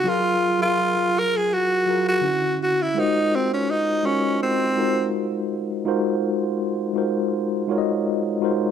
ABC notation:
X:1
M:4/4
L:1/16
Q:1/4=83
K:Abmix
V:1 name="Tine electric piano"
[G,FAB]2 z [G,FAB]4- [G,FAB] z2 [G,FAB]2 [=D,^C=E^F]3 z | [A,EFGBc]4 z2 [A,EFGBe]3 z [A,EFGBc]4 z2 | [A,EFGBc]4 z2 [A,EFGBc]3 z [A,EFGBde]3 z [A,EFGBc] z |]
V:2 name="Tenor saxophone"
F3 F3 B A G3 G3 ^F =E | E2 C D E2 D2 C4 z4 | z16 |]